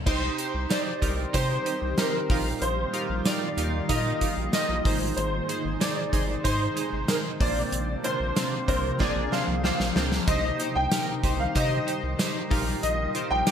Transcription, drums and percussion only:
0.07 kick loud
0.07 crash loud
0.38 closed hi-hat medium
0.70 snare loud
0.70 closed hi-hat medium
0.70 tambourine medium
1.02 kick medium
1.02 closed hi-hat medium
1.34 kick loud
1.34 closed hi-hat medium
1.66 closed hi-hat medium
1.98 snare loud
1.98 closed hi-hat medium
1.98 tambourine medium
2.30 kick loud
2.30 open hi-hat medium
2.62 closed hi-hat medium
2.94 closed hi-hat medium
3.25 snare loud
3.25 closed hi-hat medium
3.25 tambourine medium
3.58 closed hi-hat medium
3.89 kick loud
3.89 closed hi-hat medium
4.21 kick medium
4.21 closed hi-hat medium
4.53 snare loud
4.53 closed hi-hat medium
4.53 tambourine medium
4.85 kick loud
4.85 open hi-hat medium
5.17 closed hi-hat loud
5.49 closed hi-hat medium
5.81 snare loud
5.81 closed hi-hat medium
5.81 tambourine medium
6.13 kick medium
6.13 closed hi-hat medium
6.45 kick loud
6.45 closed hi-hat medium
6.77 closed hi-hat medium
7.08 snare loud
7.08 closed hi-hat medium
7.08 tambourine medium
7.41 kick loud
7.41 open hi-hat medium
7.72 closed hi-hat medium
8.04 closed hi-hat medium
8.36 snare loud
8.36 closed hi-hat medium
8.36 tambourine medium
8.68 kick medium
8.68 closed hi-hat medium
9.00 kick medium
9.00 snare medium
9.32 snare medium
9.64 snare medium
9.80 snare medium
9.96 snare loud
10.12 snare loud
10.28 kick loud
10.28 closed hi-hat medium
10.60 closed hi-hat medium
10.92 snare loud
10.92 closed hi-hat medium
10.92 tambourine medium
11.23 kick loud
11.23 closed hi-hat medium
11.56 kick loud
11.56 closed hi-hat medium
11.88 closed hi-hat medium
12.19 snare loud
12.19 closed hi-hat medium
12.19 tambourine medium
12.51 kick loud
12.51 open hi-hat medium
12.83 closed hi-hat medium
13.15 closed hi-hat medium
13.47 snare loud
13.47 closed hi-hat medium
13.47 tambourine medium

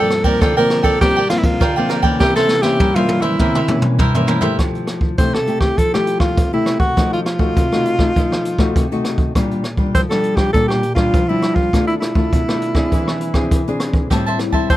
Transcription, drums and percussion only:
0.10 cross-stick medium
0.10 ride soft
0.24 kick medium
0.24 ride soft
0.42 kick medium
0.42 cross-stick medium
0.42 ride soft
0.70 cross-stick medium
0.70 ride soft
0.84 kick medium
0.84 ride soft
1.01 kick medium
1.01 cross-stick medium
1.01 ride soft
1.30 cross-stick medium
1.30 ride soft
1.44 kick medium
1.44 ride medium
1.61 kick medium
1.61 cross-stick medium
1.61 ride soft
1.89 cross-stick medium
1.89 ride soft
2.03 kick medium
2.03 ride soft
2.20 kick medium
2.20 snare medium
2.36 snare soft
2.49 snare medium
2.63 snare soft
2.80 kick medium
2.80 high tom medium
2.96 high tom medium
3.08 high tom medium
3.22 mid tom soft
3.39 kick medium
3.39 mid tom medium
3.55 mid tom medium
3.68 mid tom medium
3.82 mid tom medium
3.99 kick medium
3.99 mid tom medium
4.15 floor tom medium
4.28 floor tom medium
4.41 floor tom medium
4.59 kick medium
4.59 cross-stick medium
4.59 closed hi-hat medium
4.75 closed hi-hat soft
4.87 cross-stick medium
4.87 closed hi-hat soft
5.01 kick medium
5.18 kick medium
5.18 closed hi-hat medium
5.34 cross-stick medium
5.34 closed hi-hat soft
5.47 closed hi-hat soft
5.61 kick medium
5.61 cross-stick medium
5.61 closed hi-hat soft
5.78 kick medium
5.78 closed hi-hat medium
5.94 cross-stick medium
5.94 closed hi-hat soft
6.07 closed hi-hat soft
6.20 kick medium
6.20 cross-stick medium
6.37 kick medium
6.37 closed hi-hat medium
6.66 cross-stick medium
6.66 closed hi-hat soft
6.80 kick medium
6.80 closed hi-hat soft
6.97 kick medium
6.97 cross-stick medium
6.97 closed hi-hat medium
7.13 closed hi-hat soft
7.26 cross-stick medium
7.26 closed hi-hat soft
7.39 kick medium
7.57 kick medium
7.57 closed hi-hat medium
7.72 cross-stick medium
7.85 closed hi-hat soft
7.99 kick medium
7.99 cross-stick medium
8.16 kick medium
8.16 closed hi-hat medium
8.32 cross-stick medium
8.45 closed hi-hat medium
8.59 kick medium
8.59 cross-stick medium
8.59 closed hi-hat soft
8.76 kick medium
8.76 closed hi-hat medium
8.92 closed hi-hat soft
9.05 cross-stick medium
9.05 closed hi-hat soft
9.18 kick medium
9.18 closed hi-hat soft
9.35 kick medium
9.35 cross-stick medium
9.35 closed hi-hat medium
9.51 closed hi-hat soft
9.64 cross-stick soft
9.64 closed hi-hat soft
9.77 kick medium
9.95 kick medium
9.95 closed hi-hat medium
10.11 cross-stick medium
10.11 closed hi-hat soft
10.23 closed hi-hat soft
10.37 kick medium
10.37 cross-stick medium
10.37 closed hi-hat soft
10.54 kick medium
10.54 closed hi-hat medium
10.70 cross-stick medium
10.70 closed hi-hat soft
10.83 closed hi-hat medium
10.96 kick medium
10.96 cross-stick medium
11.14 kick medium
11.14 closed hi-hat medium
11.42 cross-stick medium
11.42 closed hi-hat soft
11.56 kick medium
11.56 closed hi-hat soft
11.73 kick medium
11.73 cross-stick medium
11.73 closed hi-hat medium
11.89 closed hi-hat soft
12.02 cross-stick medium
12.02 closed hi-hat soft
12.15 kick medium
12.33 kick medium
12.33 closed hi-hat medium
12.49 cross-stick medium
12.62 closed hi-hat soft
12.75 kick medium
12.75 cross-stick medium
12.92 kick medium
12.92 closed hi-hat medium
13.08 cross-stick medium
13.20 closed hi-hat soft
13.34 kick medium
13.34 cross-stick medium
13.34 closed hi-hat soft
13.51 kick medium
13.51 closed hi-hat medium
13.67 closed hi-hat soft
13.80 cross-stick medium
13.80 closed hi-hat medium
13.93 kick medium
13.93 closed hi-hat soft
14.11 kick medium
14.11 cross-stick medium
14.11 closed hi-hat medium
14.26 closed hi-hat soft
14.39 cross-stick medium
14.39 closed hi-hat soft
14.53 kick medium
14.70 kick medium
14.70 closed hi-hat medium

